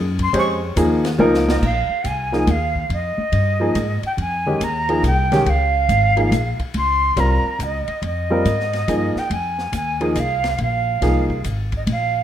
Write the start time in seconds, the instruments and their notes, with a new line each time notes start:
Already playing: upright bass F#2
0.19 flute C6, kick, ride
0.33 upright bass F2, grand piano G#3 C#4 G4 C5, ride
0.38 flute C#6
0.76 upright bass D#2, grand piano F3 A#3 D#4 G#4, hi-hat pedal, ride
1.05 snare, ride
1.19 upright bass C#2, grand piano F3 A#3 D#4 A#4
1.34 snare
1.49 flute D#5, snare
1.62 upright bass A#1, flute F5, kick, crash
1.89 muted upright bass stroke
2.04 upright bass C2, flute G#5, hi-hat pedal, ride
2.32 grand piano F3 A#3 D#4 G#4, snare
2.47 upright bass D#2, flute F5, hi-hat pedal, ride
2.75 kick
2.90 upright bass F2, flute D#5, ride
3.17 muted upright bass stroke
3.32 upright bass G2, ride
3.60 grand piano F3 A#3 D#4 G#4
3.75 upright bass G#2, hi-hat pedal, ride
4.02 flute G5, muted upright bass stroke, ride
4.17 upright bass F2, flute G#5, ride
4.46 grand piano D#3 G#3 C#4 G4
4.60 upright bass D#2, flute A#5, hi-hat pedal, ride
4.89 grand piano F3 A#3 D#4 G#4, ride
5.03 upright bass C2, flute G5, hi-hat pedal, ride
5.32 grand piano D#3 G#3 C#4 G4, snare, ride
5.46 upright bass C#2, flute F5, ride
5.89 upright bass G#1, hi-hat pedal, ride
6.17 grand piano F3 A#3 D#4 G#4, ride
6.31 upright bass A#1, hi-hat pedal, ride
6.59 muted upright bass stroke, kick, ride
6.74 upright bass C#2, flute C6, ride
7.16 upright bass C2, grand piano G3 C4 F4 A#4, flute A#5, hi-hat pedal, ride
7.44 muted upright bass stroke
7.59 upright bass C#2, flute D#5, hi-hat pedal, ride
7.87 muted upright bass stroke, ride
8.02 upright bass F2, flute D#5, ride
8.30 grand piano G3 C4 F4 A#4
8.45 upright bass G#2, hi-hat pedal, ride
8.60 snare
8.73 snare, ride
8.88 upright bass G2, grand piano F3 A#3 D#4 G#4, hi-hat pedal, ride
9.15 flute G5, muted upright bass stroke, snare
9.30 upright bass F2, flute G#5, ride
9.58 snare
9.72 upright bass D#2, flute G#5, hi-hat pedal, ride
10.01 grand piano F3 A#3 D#4 G#4, ride
10.14 upright bass C2, flute D#5, hi-hat pedal, ride
10.19 flute F5
10.44 snare, ride
10.58 upright bass A#1, flute F5, ride
11.01 upright bass C2, grand piano F3 A#3 D#4 G#4, snare, ride
11.30 kick
11.44 upright bass G#1, hi-hat pedal, ride
11.72 kick, ride
11.76 flute D#5
11.87 upright bass A#1, ride
11.91 flute F5